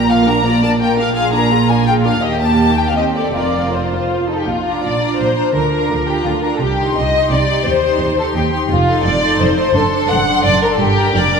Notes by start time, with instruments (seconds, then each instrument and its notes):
Already playing: double bass section A#1, cello section A#2
0.09 viola section A#3 F4, violin section A#4 F5
0.26 viola section D4 A#4, violin section A#5
0.45 viola section A#3 F4, violin section D5
0.62 viola section D4 A#4, violin section A5
0.80 viola section A#3 F4, violin section A#4 G5
0.97 viola section D4 A#4, violin section F5
1.14 double bass section A#1, cello section A#2, viola section F4 G#4, violin section G#4 F5
1.33 viola section D4 A#4, violin section A#5
1.50 viola section F4 G#4, violin section F4
1.69 viola section D4 A#4, violin section G#5
1.87 viola section F4 G#4, violin section G5
2.05 viola section D4 A#4, violin section F5
2.22 cello section D#2, double bass section D#2, viola section A#3 G4, violin section G4 D#5
2.41 violin section A5
2.59 violin section G4
2.78 violin section G5
2.88 violin section F5
2.96 viola section C4 G4, violin section D#5
3.15 viola section A4, violin section D5
3.33 double bass section F1, cello section F2, viola section C4 A#4, violin section F4 D5
3.73 viola section C4, violin section C5
3.92 viola section F4
4.28 viola section D#4, violin section A4
4.39 violin section G4
4.47 double bass section A#1, cello section A#2, violin section F4
4.66 viola section D4 F4, violin section A#5
4.83 double bass section A#1, cello section A#2, violin section D5
5.01 viola section D4 F4, violin section A#5
5.19 double bass section A#1, cello section A#2, violin section C5
5.37 viola section D4 F4, violin section A#5
5.55 double bass section D2, cello section D3, viola section D4 F4, violin section A#4 A#5
5.72 viola section D4 F4, violin section A#5
5.90 double bass section D2, cello section D3
6.08 viola section D4 F4, violin section G4 A#5
6.26 double bass section D2, cello section D3, violin section F4
6.42 viola section D4 F4, violin section A#4 A#5
6.54 violin section A4
6.61 double bass section C2, cello section C3, violin section G4
6.78 viola section D#4 G4, violin section C6
6.97 double bass section C2, cello section C3, violin section D#5
7.13 viola section D#4 G4, violin section C6
7.31 double bass section C2, cello section C3, violin section D5
7.48 viola section D#4 G4, violin section C6
7.66 double bass section D#2, cello section D#2, viola section D#4 G4, violin section C5 C6
7.83 viola section D#4 G4, violin section C6
8.00 cello section D#2, double bass section D#2
8.18 viola section D#4 G4, violin section A4 C6
8.35 cello section D#2, double bass section D#2, violin section G4
8.52 viola section D#4 G4, violin section C6
8.70 double bass section F1, cello section F2, violin section F4
8.87 viola section D#4 A4, violin section C6
9.04 double bass section F1, cello section F2, violin section D5
9.21 viola section D#4 A4, violin section C6
9.39 double bass section F1, cello section F2, violin section C5
9.57 viola section D#4 A4, violin section C6
9.74 double bass section F#1, cello section F#2, viola section D4 A4, violin section A4 C6
9.92 viola section D4 A4, violin section C6
10.09 double bass section F#1, cello section F#2, violin section F#5
10.28 viola section D4 A4, violin section C6
10.44 double bass section F#1, cello section F#2, violin section D5
10.62 viola section D4 A4, violin section A#4 C6
10.72 violin section A4
10.79 double bass section G1, cello section G2, violin section G4
10.97 viola section D4 A#4, violin section A#5
11.14 double bass section F1, cello section F2, viola section D4 A#4, violin section D5 A#5
11.32 viola section D4 A#4, violin section A#5